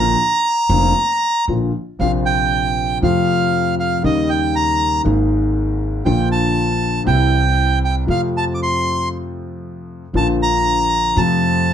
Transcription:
Already playing: upright bass A#1, grand piano A#1 A#2 D3 F3 A#3 F4, bandoneon A#5
0.69 upright bass F1, grand piano F1 F2 D3 F3 A#3 F4
1.48 upright bass A#1, grand piano A#1 A#2 D3 F3 A#3 F4
1.99 upright bass A#1, grand piano A#1 A#2 C3 F3 A#3 F4, bandoneon F5
2.26 bandoneon G5
3.01 upright bass F2, grand piano F2 C3 F3 A3 F4, bandoneon F5
3.80 bandoneon F5
4.01 grand piano D#2 C#3 D#3 G3 A#3 D#4, upright bass D#2, bandoneon D#5
4.30 bandoneon G5
4.56 bandoneon A#5
5.03 grand piano G#1 G#2 D#3 G#3 A#3 G#4, upright bass G#1
6.04 grand piano A#1 A#2 D3 F3 A#3 F4, upright bass A#1, bandoneon G5
6.32 bandoneon A5
7.05 grand piano C2 C3 E3 G3 E4, upright bass C2, bandoneon G5
7.85 bandoneon G5
8.06 grand piano F2 C3 F3 A3 F4, upright bass F2
8.10 bandoneon F5
8.37 bandoneon A5
8.55 bandoneon D6
8.63 bandoneon C6
10.13 upright bass A#1, grand piano A#1 A#2 D3 F3 A#3 F4, bandoneon A5
10.42 bandoneon A#5
11.16 upright bass F2, grand piano F2 C3 F3 A3 F4, bandoneon A5

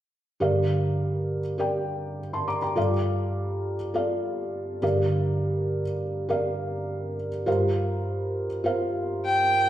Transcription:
0.40 felt piano G2 D3 G4 A#4 D5 F5
1.58 felt piano G4 A#4 D5 G5
2.33 felt piano A5 C6
2.48 felt piano A#5 D6
2.62 felt piano G5 A#5
2.76 felt piano G2 G3 F4 A4 D5 F5
3.94 felt piano F4 A4 D5 F5
4.82 felt piano G2 D3 G4 A#4 D5 F5
6.29 felt piano G4 A#4 D5 F5
7.46 felt piano G2 G3 F4 A#4 C5 F5
8.64 felt piano F4 A#4 C5 F5
9.25 violin G5

